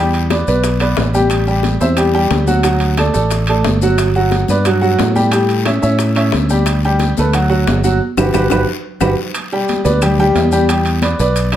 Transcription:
Already playing: E2 G3 G5
0.00 G4
0.14 high bongo, high conga, high timbale, maracas
0.30 B3 B4 D5, high bongo, high conga, high timbale, short guiro, claves, maracas
0.47 B1 B3 B4 D5, high conga, short guiro, maracas
0.64 high bongo, high conga, high timbale, long guiro, maracas
0.80 B3 B4 D5, high bongo, high conga, high timbale, claves, maracas
0.97 A1, high bongo, low bongo, high conga, high timbale, low timbale, short guiro, maracas
1.14 G3 G4 G5, high bongo, high conga, short guiro, maracas
1.30 high bongo, high timbale, long guiro, claves, maracas
1.47 G3 G4 G5, high conga, maracas
1.63 high bongo, high conga, high timbale, short guiro, maracas
1.80 E2 C4 C5 E5, high conga, short guiro, maracas
1.97 G3 G4 G5, high bongo, high conga, high timbale, long guiro, claves, maracas
2.14 G3 G4 G5, high conga, maracas
2.31 D2, high bongo, low bongo, high conga, high timbale, short guiro, maracas
2.47 F#3 F#4 F#5, high conga, short guiro, maracas
2.63 F#3 F#4 F#5, high bongo, high conga, high timbale, long guiro, claves, maracas
2.80 high bongo, high timbale, maracas
2.97 A3 A4 D5, high bongo, high conga, high timbale, short guiro, claves, maracas
3.14 A1 A3 A4 D5, high conga, short guiro, maracas
3.30 high bongo, high conga, high timbale, long guiro, maracas
3.47 A3 A4 D5, high bongo, high timbale, claves, maracas
3.64 G1, high bongo, low bongo, high conga, high timbale, short guiro, maracas
3.81 F#3 F#4 F#5, high bongo, high conga, short guiro, maracas
3.98 high bongo, high timbale, long guiro, claves, maracas
4.15 F#3 F#4 F#5, maracas
4.31 high bongo, high conga, high timbale, short guiro, maracas
4.48 G2 B3 B4 D5, high conga, short guiro, maracas
4.65 F#3 F#4 F#5, high bongo, high conga, high timbale, long guiro, claves, maracas
4.82 F#3 F#4 F#5, high conga, maracas
4.98 A2, high bongo, low bongo, high conga, high timbale, low timbale, short guiro, maracas
5.16 G3 G4 G5, high conga, short guiro, maracas
5.31 G3 G4 G5, high bongo, high conga, high timbale, long guiro, claves, maracas
5.49 high bongo, high conga, high timbale, maracas
5.65 C#4 C#5 E5, high bongo, high conga, high timbale, short guiro, claves, maracas
5.82 A2 C#4 C#5 E5, short guiro, maracas
5.99 high bongo, high conga, high timbale, long guiro, maracas
6.15 C#4 C#5 E5, high bongo, high conga, high timbale, claves, maracas
6.32 D2, high bongo, low bongo, high conga, high timbale, short guiro, maracas
6.49 G3 G4 G5, high bongo, high conga, short guiro, maracas
6.66 high bongo, high timbale, long guiro, claves, maracas
6.84 G3 G4 G5, high conga, maracas
6.99 high bongo, high conga, high timbale, short guiro, maracas
7.17 D2 A3 A4 B4, high conga, short guiro, maracas
7.33 F#3 F#4 F#5, high bongo, high conga, high timbale, long guiro, claves, maracas
7.50 F#3 F#4 F#5, high conga, maracas
7.67 G1, high bongo, low bongo, high conga, high timbale, low timbale, short guiro, maracas
7.84 F#3 F#4 F#5, high conga, short guiro, maracas
8.17 G1 F#4 G4 B4, low bongo, low conga, high timbale, long guiro, claves, maracas
8.34 G1 F#4 G4 B4, low bongo, low conga, high timbale, long guiro, claves, maracas
8.50 G1 F#4 G4 B4, low bongo, low conga, high timbale, long guiro, claves, maracas
9.00 G1 F#4 G4 B4, low bongo, low conga, high timbale, long guiro, claves, maracas
9.34 high conga, high timbale, long guiro, claves, maracas
9.52 G3 G4 G5, high conga, maracas
9.68 high conga, high timbale, short guiro, maracas
9.84 D2 B3 B4 D5, high conga, short guiro, maracas
10.02 G3 G4 G5, high conga, low conga, high timbale, long guiro, claves, maracas
10.19 G3 G4 G5, high conga, low conga, maracas
10.35 E2, high conga, high timbale, low timbale, short guiro, maracas
10.52 G3 G4 G5, high conga, short guiro, maracas
10.68 G3 G4 G5, high conga, high timbale, long guiro, claves, maracas
10.85 high conga, high timbale, maracas
11.02 B3 B4 D5, high conga, high timbale, short guiro, claves, maracas
11.19 B1 B3 B4 D5, high conga, short guiro, maracas
11.36 high conga, high timbale, long guiro, maracas
11.52 B3 B4 D5, high conga, high timbale, claves, maracas

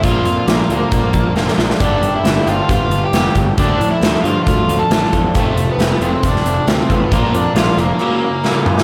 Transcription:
0.03 A#1 A#2 D3 F3 A#3 D4 F4, kick, closed hi-hat
0.25 F2 A#2 F3, closed hi-hat
0.47 A#1 A#2 D3 F3 A#3 D4 F4, snare, closed hi-hat
0.70 D2 A#2 F3 A#3 D4 F4, closed hi-hat
0.91 A#1 A#2 D3 F3 A#3 D4 F4, kick, closed hi-hat
1.13 A#1 A#2 F3, kick, closed hi-hat
1.35 F1 A#2 D3 F3 A#3 D4 F4, snare
1.48 snare
1.57 A#1 A#2 F3 A#3 D4 F4, snare
1.70 snare
1.79 G1 G2 D3 G3 B3 D4 G4, kick, closed hi-hat
2.02 G1 G2 D3, closed hi-hat
2.16 E4
2.24 G1 G2 D3 G3 B3 D4 G4, snare, closed hi-hat
2.46 G1 G2 D3 G3 B3 D4 F4 G4, closed hi-hat
2.69 G1 G2 D3 G3 B3 D4 F4 G4, kick, closed hi-hat
2.90 G1 G2 D3, closed hi-hat
3.04 G4
3.13 F1 G2 D3 G3 B3 D4 G4, snare, closed hi-hat
3.35 G1 G2 D3 G3 B3 D4 G4, kick, closed hi-hat
3.58 D2 D3 F3 A3 D4, kick, closed hi-hat
3.79 A2 D3 F3, closed hi-hat
3.91 E4
4.01 D2 D3 F3 A3 D4 F4, snare, closed hi-hat
4.24 G2 D3 F3 A3 D4 F4, closed hi-hat
4.43 D2 D3 F3 F4, kick, closed hi-hat
4.47 A3 D4 F4
4.68 D2 D3 F3, closed hi-hat
4.79 A4
4.90 A1 D3 F3 A3 D4 F4, snare, closed hi-hat
5.12 E2 D3 F3 A3 D4 F4, kick, closed hi-hat
5.34 F1 F2 C3 F3 A3 F4, kick, closed hi-hat
5.56 F1 F2 C3, closed hi-hat
5.71 B3
5.78 F1 F2 C3 F3 A3 C4 F4, snare, closed hi-hat
6.00 F1 F2 C3 F3 A3 C4 F4, closed hi-hat
6.23 F1 F2 C3 F3 A3 C4 D4 F4, kick, closed hi-hat
6.36 snare
6.44 F1 F2 C3, closed hi-hat
6.67 D2 F2 C3 F3 A3 C4 F4, snare, closed hi-hat
6.90 A1 F2 C3 F3 A3 B3 C4 F4, kick, closed hi-hat
7.11 A#1 A#2 D3 F3 A#3 D4 F4, kick, closed hi-hat
7.33 F2 A#2 F3 D4, closed hi-hat
7.55 A#1 A#2 D3 F3 A#3 D4 F4, snare, closed hi-hat
7.77 F1 A#2 F3 A#3 D4 F4, closed hi-hat
7.99 F#2 C#3 F#3 A#3 C#4 E4
8.22 F#2 C#3
8.44 F#2 C#3 F#3 A#3 C#4 E4, snare
8.66 F#2 C#3 A#3 C#4 E4, mid tom
8.78 snare

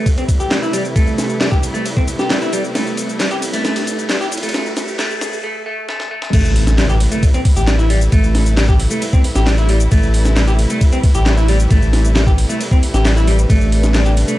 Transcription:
Already playing: C3 G3 A3 E4 B4, riser
0.06 kick, ride, shaker
0.18 C4, ride, shaker
0.29 kick, ride, shaker
0.40 A1 G4, shaker
0.51 G3, snare, clap, ride, shaker
0.62 E4, shaker
0.73 G3, ride, shaker
0.85 shaker
0.96 A1 A3, kick, ride, shaker
1.07 A1, shaker
1.18 snare, ride, shaker
1.30 shaker
1.41 G3, snare, clap, open hi-hat, shaker
1.51 G4, kick, shaker
1.63 ride, shaker
1.74 A3, shaker
1.86 ride, shaker
1.97 C4, kick, shaker
2.08 ride, shaker
2.19 A1 G4, snare, shaker
2.30 G3, snare, clap, ride, shaker
2.42 E4, shaker
2.53 G3, ride, shaker
2.64 shaker
2.75 A1 A3, snare, ride, shaker
2.86 A1, shaker
2.97 ride, shaker
3.09 shaker
3.20 G3, snare, clap, ride, shaker
3.31 G4, ride, shaker
3.42 ride, shaker
3.53 A3, ride, shaker
3.65 A3, snare, ride, shaker
3.76 ride, shaker
3.87 ride, shaker
3.98 A1, shaker
4.09 G3, snare, clap, ride, shaker
4.21 G4, shaker
4.32 ride, shaker
4.37 ride
4.43 A3, ride, shaker
4.49 ride
4.54 A3, snare, ride, shaker
4.66 A1, shaker
4.77 snare, ride, shaker
4.88 shaker
4.99 A3, snare, clap, open hi-hat, shaker
5.11 shaker
5.21 snare, ride, shaker
5.33 shaker
5.44 A3, swell
5.66 A3
5.89 A3, snare
6.00 snare
6.11 A3
6.22 snare
6.33 A1 C3 G3 A3 E4 B4, kick, crash, ride, impact, shaker
6.45 A1, shaker
6.56 open hi-hat, ride
6.67 snare, shaker
6.78 G3, snare, clap, ride, shaker
6.89 G4, ride, shaker
7.00 open hi-hat, ride
7.12 A3, ride, shaker
7.23 kick, ride, shaker
7.34 C4, ride, shaker
7.45 kick, open hi-hat, ride
7.56 A1 G4, shaker
7.67 G3, snare, clap, ride, shaker
7.79 E4, shaker
7.90 G3, open hi-hat, ride
8.01 shaker
8.12 A1 A3, kick, ride, shaker
8.24 A1, shaker
8.35 snare, open hi-hat, ride
8.46 shaker
8.57 G3, snare, clap, open hi-hat, shaker
8.69 G4, kick, shaker
8.80 open hi-hat, ride
8.91 A3, shaker
9.02 ride, shaker
9.13 C4, kick, shaker
9.24 open hi-hat, ride
9.36 A1 G4, snare, shaker
9.47 G3, snare, clap, open hi-hat, ride, shaker
9.58 E4, shaker
9.69 G3, open hi-hat, ride
9.80 shaker
9.91 A1 A3, kick, ride, shaker
10.03 A1, shaker
10.14 open hi-hat, ride
10.25 snare, shaker
10.36 G3, snare, clap, ride, shaker
10.48 G4, ride, shaker
10.59 open hi-hat, ride
10.70 A3, ride, shaker
10.81 kick, ride, shaker
10.92 C4, ride, shaker
11.03 kick, open hi-hat, ride
11.15 A1 G4, shaker
11.26 G3, snare, clap, ride, shaker
11.37 E4, shaker
11.48 G3, open hi-hat, ride
11.60 shaker
11.71 A1 A3, kick, ride, shaker
11.82 A1, shaker
11.93 snare, open hi-hat, ride
12.05 shaker
12.16 G3, snare, clap, open hi-hat, shaker
12.27 G4, kick, shaker
12.38 open hi-hat, ride
12.49 A3, shaker
12.61 ride, shaker
12.71 C4, kick, shaker
12.83 open hi-hat, ride
12.94 A1 G4, snare, shaker
13.05 G3, snare, clap, open hi-hat, ride, shaker
13.17 E4, shaker
13.28 G3, open hi-hat, ride
13.39 shaker
13.50 A1 A3 D4, kick, ride, shaker
13.61 A1, shaker
13.72 open hi-hat, ride
13.83 snare, shaker
13.94 G3, snare, clap, ride, shaker
14.06 G4, ride, shaker
14.17 open hi-hat, ride
14.28 A3, ride, shaker

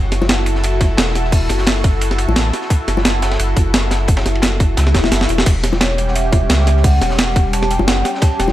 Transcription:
Already playing: F#1 E4 F#4 A4
0.12 snare, closed hi-hat, ride
0.21 snare, high bongo
0.29 snare, closed hi-hat, ride
0.46 closed hi-hat, ride
0.55 snare
0.64 closed hi-hat, ride
0.81 kick, closed hi-hat, ride, high bongo
0.97 E1, snare, closed hi-hat, ride
1.07 snare
1.15 snare, closed hi-hat, ride
1.24 snare
1.32 kick, closed hi-hat, open hi-hat
1.49 F#1, snare, closed hi-hat, ride
1.58 snare
1.66 snare, closed hi-hat, ride
1.84 kick, closed hi-hat, ride
2.01 closed hi-hat, ride
2.11 snare
2.18 closed hi-hat, ride
2.28 A1, high bongo
2.36 snare, closed hi-hat, ride
2.53 snare, closed hi-hat, ride
2.61 snare
2.70 kick, closed hi-hat, ride
2.88 F#1, snare, closed hi-hat, ride
2.97 snare, high bongo
3.05 snare, closed hi-hat, ride
3.22 snare, closed hi-hat, ride
3.31 snare, ride
3.39 F#1, closed hi-hat, ride
3.56 F#1, kick, closed hi-hat, ride, high bongo
3.74 snare, closed hi-hat, ride
3.91 snare, closed hi-hat, ride
4.08 kick, closed hi-hat, ride
4.17 snare, ride
4.26 F#1, snare, closed hi-hat
4.35 ride
4.42 snare, closed hi-hat, ride
4.60 kick, closed hi-hat, ride
4.77 C#2, snare, closed hi-hat, ride, swell
4.87 snare
4.94 E1, kick, snare, closed hi-hat, ride
5.04 snare, high bongo
5.11 F#1, snare, closed hi-hat, ride
5.21 snare
5.29 E1, closed hi-hat, ride
5.38 snare
5.46 E1 G3 C#4 G4, kick, closed hi-hat, crash, ride
5.63 snare, closed hi-hat, ride
5.72 snare, high bongo
5.81 C#5, snare, closed hi-hat, ride
5.98 closed hi-hat, ride
6.08 F#5, snare
6.15 E5, closed hi-hat, ride
6.32 kick, closed hi-hat, ride, high bongo
6.50 C#2, snare, closed hi-hat, ride
6.60 snare
6.67 snare, closed hi-hat, ride
6.77 snare
6.84 F#5, kick, closed hi-hat, open hi-hat
7.02 E1, snare, closed hi-hat, ride
7.10 snare
7.18 snare, closed hi-hat, ride
7.36 kick, closed hi-hat, ride
7.53 A5, closed hi-hat, ride
7.63 snare
7.71 G5, closed hi-hat, ride
7.79 F#1, high bongo
7.88 F#5, snare, closed hi-hat, ride
8.05 G5, snare, closed hi-hat, ride
8.15 snare
8.22 A5, kick, closed hi-hat, ride
8.39 E1 G5, snare, closed hi-hat, ride
8.48 snare, high bongo

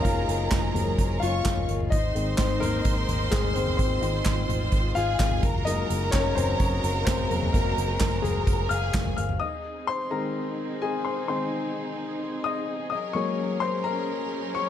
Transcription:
Already playing: F#3 G#3 A#3 C4 C#4 D#4 G#4 A#4 C5 C#5 D#5 A#5
0.02 F#1 F4 F5, kick, closed hi-hat
0.28 F#1, closed hi-hat
0.51 F#1, kick, snare, clap, closed hi-hat
0.74 F#1 F#3 G#3 A#3, closed hi-hat, floor tom
0.98 F#1, kick, closed hi-hat
1.20 F#1 F4 C#5 F5 C#6, closed hi-hat
1.45 F#1, kick, snare, clap, closed hi-hat
1.57 floor tom
1.69 G1, closed hi-hat
1.80 floor tom
1.90 G#1 G#3 C4 D#4 C5 D#5 C6, kick, closed hi-hat
2.15 G#1 D#3 G#3 C4, closed hi-hat
2.37 G#1 C4 C5, kick, snare, clap, closed hi-hat
2.40 clap
2.60 G#1 A#3 A#4, closed hi-hat, floor tom
2.85 G#1, kick, closed hi-hat
3.09 G#1, closed hi-hat, floor tom
3.31 G#1 D#3 G#3 C4 G#4, kick, snare, clap, closed hi-hat
3.44 floor tom
3.54 G1 C4 C5, closed hi-hat
3.67 floor tom
3.77 G#1 C4 F4 C5, kick, closed hi-hat
4.01 G#1 D#3 G#3 C4, closed hi-hat
4.25 G#1, kick, snare, clap, closed hi-hat
4.27 clap
4.49 G#1, closed hi-hat, floor tom
4.72 G#1, kick, closed hi-hat
4.95 G#1 F4 G#4 F5 G#5, closed hi-hat
5.19 G#1 D#3 G#3 C4, kick, snare, clap, closed hi-hat
5.31 floor tom
5.42 F#1 F#3 F#4 G#4 A#4 A#5, kick, closed hi-hat
5.54 floor tom
5.65 F#3 G#3 A#3 D#4 D#5, closed hi-hat
5.90 F#1, closed hi-hat
6.11 F#1 C#4 C#5, kick, snare, clap, closed hi-hat
6.35 F#1 C4 C5, closed hi-hat, floor tom
6.58 F#1 C#4 C#5, kick, closed hi-hat
6.84 F#1, closed hi-hat
7.05 F#1 C4 C5, kick, snare, clap, closed hi-hat
7.19 floor tom
7.30 F1 F#3 G#3 A#3, closed hi-hat
7.43 floor tom
7.52 F#1 A#3 A#4, kick, closed hi-hat
7.78 F#1, closed hi-hat
8.00 F#1, kick, snare, clap, closed hi-hat
8.02 clap
8.22 F#1 G#3 G#4, closed hi-hat, floor tom
8.47 F#1, kick, closed hi-hat
8.69 F#1 G#4 F5 G#5 F6, closed hi-hat
8.94 F#1, kick, snare, clap, closed hi-hat
9.06 floor tom
9.17 G1 F5 F6, closed hi-hat
9.29 floor tom
9.40 C4 D#4 G#4 D#5 D#6
9.87 C5 C6
10.10 D#3 G#3 C4 A#4 A#5
10.82 G#4 G#5
11.05 C5 C6
11.28 D#3 G#3 C4 C5 C6
12.44 D#5 D#6
12.90 F#3 C#4 A#4 D#5 D#6
13.13 F#3 G#3 A#3 C#5 C#6
13.60 C5 C6
13.84 A#4 A#5
14.55 C#5 C#6

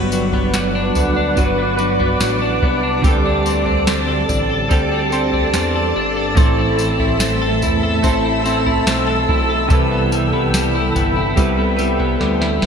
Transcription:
Already playing: G1 F#3 G3 B3 D4 F#4 B4 D5 F#5 D6
0.12 F#3, tambourine
0.33 B3, floor tom
0.54 F#3, snare, tambourine
0.75 D4
0.95 D2 B3, floor tom, tambourine
1.17 D4
1.36 G1 F#3 B3 D4 F#4, kick, tambourine
1.40 B4
1.58 B3
1.77 F#3 D4 F#4 B4, tambourine
2.00 B3, floor tom
2.20 A1 F#3, snare, tambourine
2.42 D4
2.62 C2 B3, kick
2.83 D4
3.02 D2 D3 G3 C4 A4 A5, kick, floor tom, tambourine
3.07 G4 A4
3.26 D4
3.46 C4, tambourine
3.66 D4, floor tom
3.87 C4, snare, tambourine
4.08 A4
4.29 A1 D4, floor tom, tambourine
4.50 A4
4.69 D2 G3 C4 G4 A4, kick, tambourine
4.92 D4
5.10 C4 G4 A4, tambourine
5.14 C4
5.33 D4, floor tom
5.53 E2 C4, snare, tambourine
5.75 A4
5.96 G1 D4
6.17 A4
6.35 A1 A2 E3 A3 C4 E5 E6, kick, floor tom, tambourine
6.40 E4 A4
6.59 E4
6.79 C4, tambourine
7.00 E4, floor tom
7.20 C4, snare, tambourine
7.42 A4
7.62 E2 E4, floor tom, tambourine
7.83 A4
8.03 A1 A3 C4 E4, kick, tambourine
8.07 A4
8.25 E4
8.44 A3 C4 E4 A4, tambourine
8.66 E4, floor tom
8.87 B1 C4, snare, tambourine
9.07 A4
9.29 B1 E4, kick
9.50 A4
9.68 C2 C3 E3 G3 G5 B5, kick, floor tom, tambourine
9.72 C4 E4 B4
9.91 B3
10.12 G3, tambourine
10.33 B3, floor tom
10.54 G3, snare, tambourine
10.75 E4
10.95 G1 B3, floor tom, tambourine
11.17 E4
11.36 C2 G3 C4 E4 B4, kick, floor tom, tambourine
11.58 B3
11.77 G3 C4 E4 B4, tambourine
11.81 G3
12.00 B3, floor tom
12.20 D2 G3, snare
12.41 E4, snare
12.62 F#1 B3, snare

